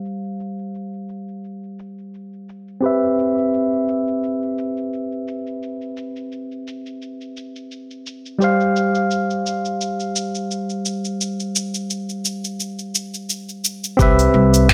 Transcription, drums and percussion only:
0.05 shaker soft
0.24 shaker soft
0.40 shaker medium
0.59 shaker soft
0.75 shaker soft
0.93 shaker soft
1.09 shaker medium
1.28 shaker soft
1.44 shaker soft
1.63 shaker soft
1.79 shaker medium
1.98 shaker soft
2.14 shaker soft
2.33 shaker soft
2.49 shaker medium
2.68 shaker soft
2.84 shaker soft
3.03 shaker soft
3.19 shaker medium
3.38 shaker soft
3.54 shaker soft
3.73 shaker soft
3.88 shaker medium
4.07 shaker soft
4.23 shaker soft
4.43 shaker soft
4.58 shaker medium
4.77 shaker soft
4.93 shaker soft
5.12 shaker soft
5.28 shaker medium
5.47 shaker soft
5.63 shaker soft
5.81 shaker soft
5.97 shaker medium
6.16 shaker soft
6.32 shaker soft
6.52 shaker soft
6.68 shaker medium
6.86 shaker soft
7.02 shaker soft
7.21 shaker soft
7.37 shaker medium
7.56 shaker soft
7.71 shaker soft
7.91 shaker soft
8.06 shaker medium
8.26 shaker soft
8.41 shaker soft
8.60 shaker soft
8.76 shaker medium
8.95 shaker soft
9.11 shaker soft
9.30 shaker soft
9.46 shaker medium
9.65 shaker soft
9.81 shaker soft
10.00 shaker soft
10.16 shaker medium
10.35 shaker soft
10.51 shaker soft
10.70 shaker soft
10.85 shaker medium
11.05 shaker soft
11.21 shaker soft
11.40 shaker soft
11.56 shaker medium
11.74 shaker soft
11.90 shaker soft
12.09 shaker soft
12.25 shaker medium
12.44 shaker soft
12.60 shaker soft
12.79 shaker soft
12.95 shaker medium
13.14 shaker soft
13.30 shaker soft
13.49 shaker soft
13.65 shaker medium
13.84 shaker soft
13.99 kick medium
13.99 shaker medium
14.19 open hi-hat soft
14.19 shaker soft
14.54 open hi-hat medium
14.54 shaker medium
14.69 finger snap medium
14.69 kick loud
14.69 shaker medium

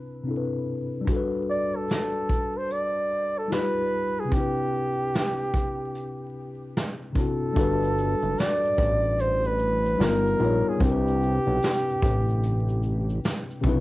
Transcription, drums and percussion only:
1.07 kick medium
1.07 closed hi-hat medium
1.89 snare loud
1.89 closed hi-hat medium
2.29 kick medium
2.70 closed hi-hat medium
3.52 snare medium
3.52 closed hi-hat medium
4.32 kick medium
4.32 closed hi-hat medium
5.14 snare loud
5.14 closed hi-hat medium
5.54 kick medium
5.95 closed hi-hat medium
6.76 snare loud
6.76 closed hi-hat medium
7.15 kick medium
7.56 kick loud
7.56 closed hi-hat medium
7.56 shaker medium
7.83 shaker medium
7.98 shaker medium
8.22 shaker soft
8.38 snare loud
8.38 closed hi-hat medium
8.38 shaker medium
8.65 shaker soft
8.78 kick medium
8.78 shaker soft
9.19 closed hi-hat medium
9.19 shaker medium
9.44 shaker soft
9.59 shaker medium
9.85 shaker medium
10.00 snare loud
10.00 closed hi-hat medium
10.00 shaker medium
10.27 shaker medium
10.39 shaker soft
10.80 kick loud
10.80 closed hi-hat medium
10.80 shaker medium
11.07 shaker medium
11.22 shaker medium
11.62 snare loud
11.62 closed hi-hat medium
11.62 shaker medium
11.89 shaker soft
12.02 kick loud
12.02 shaker soft
12.28 shaker soft
12.43 closed hi-hat medium
12.43 shaker medium
12.68 shaker medium
12.83 shaker soft
13.09 shaker medium
13.25 snare loud
13.25 closed hi-hat medium
13.25 shaker medium
13.50 shaker medium
13.63 kick loud
13.63 shaker soft

